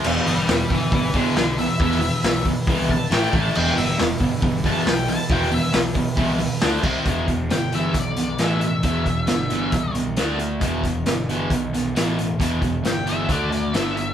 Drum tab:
CC |x---------------|----------------|x---------------|--------------x-|
HH |--o-o-o-o-o-o-o-|o-o-o-o-o-o-o-o-|--o-o-o-o-o-o-o-|o-o-o-o-o-o-o---|
SD |----o-------o---|-o--o-------o---|-o--o-------o---|----o-------o---|
BD |------o-o-o-----|o-----o-o-o---o-|------o-o-o-----|o-----o-o-----o-|

CC |----------------|----------------|----------------|----------------|
HH |x-x-x-x-x-x-x-x-|x-x-x-x-x-x-x-x-|x-x-x-x-x-x-x-x-|x-x-x-x-x-x-x-x-|
SD |----o-------o---|----o-------o---|----o-------o---|----o-------o---|
BD |o-o-----o-------|o-o-----o-------|o-o-----o-------|o-o-----o-------|